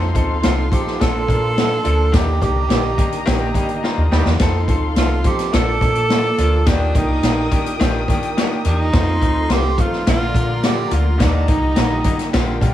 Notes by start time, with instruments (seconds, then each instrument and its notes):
Already playing: fingered electric bass F2, tonewheel organ F3 C4 D#4 A4, string section A4 F5 C6
0.14 fingered electric bass D2, grand piano F3 C4 D#4 A4, kick, closed hi-hat
0.42 fingered electric bass C2, grand piano F3 C4 D#4 A4, tenor saxophone F4, snare, closed hi-hat
0.71 grand piano F3 C4 D#4 A4, fingered electric bass F3, tenor saxophone G4, kick, closed hi-hat
0.87 snare
0.99 fingered electric bass A#1, grand piano F3 A#3 D4 A4, tonewheel organ A#3 D4, string section A4 F5 C6, tenor saxophone A4, kick, snare, closed hi-hat
1.28 fingered electric bass A#2, grand piano F3 A#3 D4 A#4, kick, closed hi-hat
1.56 grand piano F3 A#3 D4 A4, snare, closed hi-hat
1.84 fingered electric bass D2, grand piano F3 A#3 D4 A4, closed hi-hat
2.12 fingered electric bass D#2, tonewheel organ D3 D#3 G4, grand piano D#3 A#3 D4 G4, string section G4 D#5 A#5, tenor saxophone G4, kick, snare, closed hi-hat
2.40 fingered electric bass C2, grand piano D#3 A#3 D4 G4, tenor saxophone G4, kick, closed hi-hat
2.68 fingered electric bass A#1, grand piano D#3 A#3 D4 G4, snare, closed hi-hat
2.97 grand piano D#3 A#3 D4 G4, fingered electric bass D#3, kick, closed hi-hat
3.12 closed hi-hat
3.26 fingered electric bass A#1, grand piano D#3 A#3 D4 G4, kick, snare, closed hi-hat
3.54 grand piano D#3 A#3 D4 G4, fingered electric bass D#3, saxophone section G3 D#4 G4, kick, closed hi-hat
3.69 closed hi-hat
3.83 grand piano D#3 A#3 D4 F4, snare
3.97 fingered electric bass D#2
4.11 fingered electric bass D#2, grand piano D#3 A#3 D4 G4, saxophone section G3 D#4 G4, snare
4.25 fingered electric bass E2, snare
4.39 fingered electric bass F2, grand piano F3 C4 D#4 A4, tonewheel organ F3 C4 D#4 A4, string section A4 F5 C6, kick, snare, closed hi-hat
4.68 fingered electric bass D2, grand piano F3 C4 D#4 A4, kick, closed hi-hat
4.96 fingered electric bass C2, grand piano F3 C4 D#4 A4, tenor saxophone F4, snare, closed hi-hat
5.24 fingered electric bass F3, grand piano F3 C4 D#4 A4, tenor saxophone G4, kick, closed hi-hat
5.39 snare, closed hi-hat
5.52 fingered electric bass A#1, grand piano F3 A#3 D4 A4, tonewheel organ F3 A#3 F4, string section A#3 A5 D6, tenor saxophone A4, kick, snare, closed hi-hat
5.80 fingered electric bass A#2, grand piano F3 A#3 D4 A4, kick, closed hi-hat
5.95 closed hi-hat
6.09 grand piano F3 A#3 D4 A4, snare, closed hi-hat
6.38 fingered electric bass D2, grand piano F3 A#3 D4 F4, closed hi-hat
6.66 fingered electric bass D#2, grand piano D#3 A#3 D4 G4, tonewheel organ D#3 G4, tenor saxophone D4, string section A#4 G5 D#6, kick, snare, closed hi-hat
6.94 fingered electric bass C2, grand piano D#3 A#3 D4 G4, tenor saxophone D#4, kick, closed hi-hat
7.22 fingered electric bass A#1, grand piano D#3 A#3 D4 A#4, snare, closed hi-hat
7.51 grand piano D#3 A#3 D4 G4, fingered electric bass D#3, kick, closed hi-hat
7.66 closed hi-hat
7.79 fingered electric bass A#1, grand piano D#3 A#3 D4 G4, kick, snare, closed hi-hat
8.08 fingered electric bass D#3, grand piano D#3 A#3 D4 G4, kick, closed hi-hat
8.23 closed hi-hat
8.37 grand piano D#3 A#3 D4 G4, snare, closed hi-hat
8.65 fingered electric bass E2, grand piano D#3 A#3 D4 G4, tenor saxophone D#4, closed hi-hat
8.93 fingered electric bass F2, grand piano D#3 A3 C4 F4, tonewheel organ A3 C4 F4, string section A4 F5 C6, kick, snare, closed hi-hat
9.21 fingered electric bass D2, grand piano D#3 A3 C4 F4, kick, closed hi-hat
9.49 fingered electric bass C2, grand piano D#3 A3 C4 F4, tenor saxophone G4, snare, closed hi-hat
9.77 grand piano D#3 A3 C4 D#4, fingered electric bass F3, tenor saxophone F4, kick, closed hi-hat
9.93 snare
10.07 fingered electric bass A#1, grand piano D3 A3 A#3 F4, tonewheel organ F3 A#3 F4, string section F4 D5 A#5, tenor saxophone F4, kick, snare, closed hi-hat
10.34 fingered electric bass A#2, grand piano D3 A3 A#3 F4, kick, closed hi-hat
10.62 grand piano D3 A3 A#3 F4, tenor saxophone G4, snare, closed hi-hat
10.90 fingered electric bass D2, grand piano D3 A3 A#3 F4, tenor saxophone F4, closed hi-hat
11.18 fingered electric bass D#2, grand piano D3 G3 A#3 D#4, tonewheel organ G3 D#4, string section G4 D#5 A#5, kick, snare, closed hi-hat
11.22 tenor saxophone D4
11.47 fingered electric bass C2, grand piano D3 G3 A#3 D#4, tenor saxophone D#4, kick, closed hi-hat
11.76 fingered electric bass A#1, grand piano D3 G3 A#3 D#4, snare, closed hi-hat
12.04 grand piano D3 G3 A#3 D#4, fingered electric bass D#3, kick, closed hi-hat
12.19 snare, closed hi-hat
12.33 fingered electric bass A#1, grand piano D3 G3 A#3 F4, tonewheel organ G3 F4, string section D4 A#4 G5, kick, snare, closed hi-hat
12.61 fingered electric bass A#2, grand piano D3 G3 A#3 F4, saxophone section A#3 D4 G4, kick, closed hi-hat